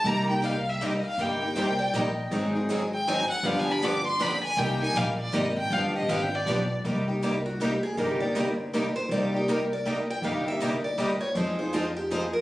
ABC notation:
X:1
M:3/4
L:1/16
Q:"Swing" 1/4=159
K:Cm
V:1 name="Violin"
b2 g2 f2 =e2 _e2 f2 | g12 | z6 g2 a2 _g2 | (3f2 a2 =b2 d'2 c'2 b2 a2 |
g2 a2 f2 d2 e2 g2 | f2 e2 (3f2 g2 d2- d2 z2 | z12 | z12 |
z12 | z12 | z12 |]
V:2 name="Steel-string acoustic guitar"
z12 | z4 c2 d2 e4- | e4 z8 | z12 |
z12 | z12 | z6 ^F2 G2 A2 | B2 d2 e2 c2 B2 c2 |
d2 G2 B2 d2 e2 g2 | f2 =e2 _e2 d2 e2 _d2 | c2 A2 F2 G2 A2 B2 |]
V:3 name="Steel-string acoustic guitar"
[C,G,B,EG]2 [B,EG]2 [C,G,B,EG] z3 [C,G,B,EG] z3 | [C,G,B,EG]2 [B,EG]2 [C,G,B,EG] z3 [C,G,B,EG] z3 | [E,_G,CEA]2 [CEA]2 [E,G,CEA] z3 [E,G,CEA] z3 | [D,F,=B,DG]2 [B,DG]2 [D,F,B,DG] z3 [D,F,B,DG] z3 |
[C,G,B,EG]2 [B,EG]2 [C,G,B,EG] z3 [C,G,B,EG] z3 | [D,F,=B,DG]2 [B,DG]2 [D,F,B,DG] z3 [D,F,B,DG] z3 | [C,G,B,EG]2 [B,EG]2 [C,G,B,EG] z3 [C,G,B,EG] z3 | [C,G,B,EG]2 [B,EG]2 [C,G,B,EG] z3 [C,G,B,EG] z3 |
[C,G,B,EG]2 [B,EG]2 [C,G,B,EG] z3 [C,G,B,EG] z3 | [C,G,B,EG]2 [B,EG]2 [C,G,B,EG] z3 [C,G,B,EG] z3 | [F,A,EFc]2 [EFc]2 [F,A,EFc] z3 [F,A,EFc] z3 |]
V:4 name="Steel-string acoustic guitar"
[C,G,B,EG]2 z2 [C,G,B,EG] z3 [C,G,B,EG] z3 | [C,G,B,EG]2 z2 [C,G,B,EG] z3 [C,G,B,EG] z3 | [E,_G,CEA]2 z2 [E,G,CEA] z3 [E,G,CEA] z3 | [D,F,=B,DG]2 z2 [D,F,B,DG] z3 [D,F,B,DG] z3 |
[C,G,B,EG]2 z2 [C,G,B,EG] z3 [C,G,B,EG] z3 | [D,F,=B,DG]2 z2 [D,F,B,DG] z3 [D,F,B,DG] z3 | [C,G,B,EG]2 z2 [C,G,B,EG] z3 [C,G,B,EG] z3 | [C,G,B,EG]2 z2 [C,G,B,EG] z3 [C,G,B,EG] z3 |
[C,G,B,EG]2 z2 [C,G,B,EG] z3 [C,G,B,EG] z3 | [C,G,B,EG]2 z2 [C,G,B,EG] z3 [C,G,B,EG] z3 | [F,CEA]2 z2 [F,CEA] z3 [F,CEA] z3 |]
V:5 name="Upright bass" clef=bass
C,,12 | G,,,4 C,,4 B,,,4 | A,,,12 | G,,,12 |
C,,4 B,,,4 A,,,4 | G,,,4 A,,,4 =B,,,4 | C,,12 | G,,,12 |
C,,12 | G,,,12 | F,,12 |]